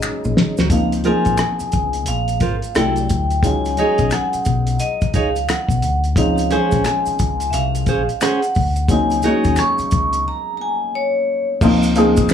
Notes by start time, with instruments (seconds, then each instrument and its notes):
Already playing: tonewheel organ C#3 F#3 G#3 D#4, upright piano F#3 A#3 C4 D#4 F#4 G#4
0.03 finger snap, maracas
0.24 fingered electric bass A#1, maracas
0.37 snare
0.58 fingered electric bass D2, nylon-string guitar D#4 F#4 C5, snare, maracas
0.69 fingered electric bass C#2, upright piano F3 A#3 C4 D#4 F4, kick, closed hi-hat, maracas
0.74 vibraphone F5
0.92 closed hi-hat, maracas
1.04 upright piano F3 A#3 C4 D#4 G#4, nylon-string guitar F4 A#4 C5, vibraphone G#5, closed hi-hat
1.25 fingered electric bass A#1, kick, closed hi-hat, maracas
1.38 finger snap, cross-stick, closed hi-hat, maracas
1.60 muted fingered electric bass stroke, closed hi-hat, maracas
1.72 fingered electric bass C#2, kick, closed hi-hat, maracas
1.93 closed hi-hat, maracas
2.06 fingered electric bass A#1, vibraphone F5, closed hi-hat, maracas
2.28 closed hi-hat, maracas
2.40 fingered electric bass G#1, nylon-string guitar F4 A#4 C5, kick, closed hi-hat, maracas
2.62 closed hi-hat, maracas
2.75 fingered electric bass C2, upright piano G3 A3 D4 E4 F4, nylon-string guitar E4 A4 D5, vibraphone G5, finger snap, cross-stick, closed hi-hat, maracas
2.83 upright piano F#3
2.96 closed hi-hat, maracas
3.09 fingered electric bass D2, kick, closed hi-hat, maracas
3.30 closed hi-hat, maracas
3.43 fingered electric bass C#2, upright piano F#3 G#3 C#4 D#4 F4, vibraphone G#5, kick, closed hi-hat, maracas
3.65 closed hi-hat, maracas
3.77 upright piano F#3 G#3 C#4 D#4 G#4, nylon-string guitar D#4 G#4 C#5, closed hi-hat
3.98 fingered electric bass B1, kick, cross-stick, closed hi-hat, maracas
4.10 vibraphone F#5 G#5, finger snap, cross-stick, closed hi-hat, maracas
4.33 muted fingered electric bass stroke, closed hi-hat, maracas
4.45 fingered electric bass B1, kick, closed hi-hat, maracas
4.67 closed hi-hat, maracas
4.79 vibraphone D#5, closed hi-hat, maracas
5.01 muted fingered electric bass stroke, kick, closed hi-hat, maracas
5.14 fingered electric bass C#2, nylon-string guitar D#4 G#4 C#5, vibraphone F5, kick, closed hi-hat, maracas
5.36 closed hi-hat, maracas
5.49 vibraphone F#5, finger snap, cross-stick, closed hi-hat, maracas
5.69 fingered electric bass B1, kick, closed hi-hat, maracas
5.82 fingered electric bass D2, closed hi-hat, maracas
6.04 closed hi-hat, maracas
6.16 fingered electric bass C#2, upright piano F3 G#3 C4 C#4 D#4, vibraphone F5, kick, closed hi-hat, maracas
6.38 closed hi-hat, maracas
6.50 upright piano F3 G#3 C#4 F4 C5, nylon-string guitar C#4 G#4 C5, vibraphone G#5, closed hi-hat
6.72 fingered electric bass A#1, kick, cross-stick, closed hi-hat, maracas
6.84 finger snap, cross-stick, closed hi-hat, maracas
7.06 muted fingered electric bass stroke, closed hi-hat, maracas
7.19 fingered electric bass C#2, kick, closed hi-hat, maracas
7.40 closed hi-hat, maracas
7.50 fingered electric bass C2, vibraphone E5 F5, closed hi-hat, maracas
7.75 closed hi-hat, maracas
7.86 fingered electric bass A#1, nylon-string guitar C#4 G#4 C5, kick, closed hi-hat, maracas
8.09 closed hi-hat, maracas
8.21 nylon-string guitar C#4 G#4 C5, vibraphone F#5, finger snap, cross-stick, closed hi-hat, maracas
8.42 closed hi-hat, maracas
8.55 fingered electric bass D2, kick, open hi-hat, maracas
8.76 closed hi-hat, maracas
8.88 fingered electric bass C#2, upright piano F#3 A#3 C4 C#4 D#4, vibraphone G#5, kick, closed hi-hat, maracas
9.10 closed hi-hat, maracas
9.22 upright piano F#3 G#3 A#3 C#4 D#4, nylon-string guitar D#4 F#4 C#5, closed hi-hat, maracas
9.44 fingered electric bass D#2, kick, cross-stick, closed hi-hat, maracas
9.56 vibraphone C#6, finger snap, cross-stick, closed hi-hat, maracas
9.78 muted fingered electric bass stroke, closed hi-hat, maracas
9.91 fingered electric bass C#2, kick, closed hi-hat, maracas
10.13 closed hi-hat, maracas
10.28 vibraphone A#5
10.57 vibraphone A#5
10.61 vibraphone G#5
10.95 vibraphone C#5
11.61 fingered electric bass C#2, upright piano F3 A#3 C4 D#4 F4, kick, crash, maracas
11.83 closed hi-hat, maracas
11.95 upright piano F3 A#3 C4 D#4 G#4, closed hi-hat, maracas
12.17 kick, closed hi-hat, maracas
12.29 finger snap, maracas